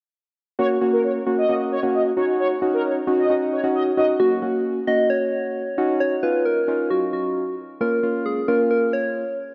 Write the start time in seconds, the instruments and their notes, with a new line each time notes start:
0.59 synth keys A#3 C#4 F#4, analog polysynth C#5
0.81 synth keys A#3 C#4 F#4
0.93 analog polysynth A#4
1.04 analog polysynth C#5
1.26 synth keys A#3 C#4 F#4
1.38 analog polysynth D#5
1.49 synth keys A#3 C#4 F#4
1.72 analog polysynth C#5
1.83 synth keys A#3 C#4 F#4
1.94 analog polysynth D#5
2.17 synth keys C#4 D#4 F#4, analog polysynth C#5
2.39 analog polysynth C#5
2.62 synth keys C#4 D#4 F#4
2.73 analog polysynth A#4
2.85 analog polysynth C#5
3.07 synth keys C#4 D#4 F#4
3.18 analog polysynth D#5
3.30 synth keys C#4 D#4 F#4
3.52 analog polysynth C#5
3.63 synth keys C#4 D#4 F#4
3.75 analog polysynth D#5
3.97 synth keys C#4 D#4 F#4, analog polysynth D#5
4.20 synth keys A#3 C#4 F#4, soft synth lead F#4
4.42 synth keys A#3 C#4 F#4
4.87 synth keys A#3 C#4 F#4, soft synth lead D#5
5.10 soft synth lead C#5
5.78 synth keys C#4 D#4 F#4
6.00 soft synth lead C#5
6.23 synth keys C#4 D#4 F4, soft synth lead B4
6.45 soft synth lead A#4
6.68 synth keys C#4 D#4 F4
6.91 soft synth lead F#4
7.13 soft synth lead F#4
7.81 synth keys A#3 C#4 F4, soft synth lead A#4
8.03 synth keys A#3 C#4 F4
8.26 soft synth lead G#4
8.48 synth keys A#3 C#4 F4, soft synth lead A#4
8.71 soft synth lead A#4
8.93 soft synth lead C#5